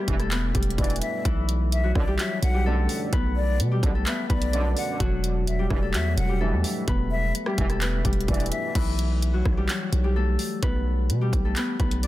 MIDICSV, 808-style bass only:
0, 0, Header, 1, 2, 480
1, 0, Start_track
1, 0, Key_signature, 2, "minor"
1, 0, Tempo, 468750
1, 1281, Time_signature, 4, 2, 24, 8
1, 12362, End_track
2, 0, Start_track
2, 0, Title_t, "808-style bass"
2, 0, Program_c, 0, 38
2, 81, Note_on_c, 0, 28, 102
2, 542, Note_off_c, 0, 28, 0
2, 561, Note_on_c, 0, 28, 101
2, 792, Note_off_c, 0, 28, 0
2, 801, Note_on_c, 0, 28, 105
2, 1032, Note_off_c, 0, 28, 0
2, 1282, Note_on_c, 0, 35, 112
2, 1973, Note_off_c, 0, 35, 0
2, 2002, Note_on_c, 0, 35, 103
2, 2232, Note_off_c, 0, 35, 0
2, 2482, Note_on_c, 0, 35, 104
2, 2943, Note_off_c, 0, 35, 0
2, 3202, Note_on_c, 0, 35, 104
2, 3681, Note_on_c, 0, 47, 97
2, 3696, Note_off_c, 0, 35, 0
2, 3909, Note_off_c, 0, 47, 0
2, 3922, Note_on_c, 0, 35, 106
2, 4152, Note_off_c, 0, 35, 0
2, 4401, Note_on_c, 0, 35, 102
2, 4862, Note_off_c, 0, 35, 0
2, 5122, Note_on_c, 0, 28, 108
2, 5813, Note_off_c, 0, 28, 0
2, 5842, Note_on_c, 0, 28, 107
2, 6081, Note_on_c, 0, 40, 100
2, 6097, Note_off_c, 0, 28, 0
2, 6309, Note_off_c, 0, 40, 0
2, 6321, Note_on_c, 0, 28, 106
2, 6681, Note_on_c, 0, 40, 104
2, 6697, Note_off_c, 0, 28, 0
2, 6795, Note_off_c, 0, 40, 0
2, 7042, Note_on_c, 0, 28, 114
2, 7502, Note_off_c, 0, 28, 0
2, 7762, Note_on_c, 0, 28, 106
2, 8222, Note_off_c, 0, 28, 0
2, 8241, Note_on_c, 0, 28, 101
2, 8472, Note_off_c, 0, 28, 0
2, 8482, Note_on_c, 0, 28, 109
2, 8712, Note_off_c, 0, 28, 0
2, 8962, Note_on_c, 0, 35, 107
2, 9653, Note_off_c, 0, 35, 0
2, 9682, Note_on_c, 0, 35, 102
2, 9912, Note_off_c, 0, 35, 0
2, 10162, Note_on_c, 0, 35, 97
2, 10622, Note_off_c, 0, 35, 0
2, 10882, Note_on_c, 0, 35, 106
2, 11362, Note_on_c, 0, 47, 98
2, 11377, Note_off_c, 0, 35, 0
2, 11590, Note_off_c, 0, 47, 0
2, 11600, Note_on_c, 0, 35, 104
2, 11831, Note_off_c, 0, 35, 0
2, 12080, Note_on_c, 0, 35, 100
2, 12362, Note_off_c, 0, 35, 0
2, 12362, End_track
0, 0, End_of_file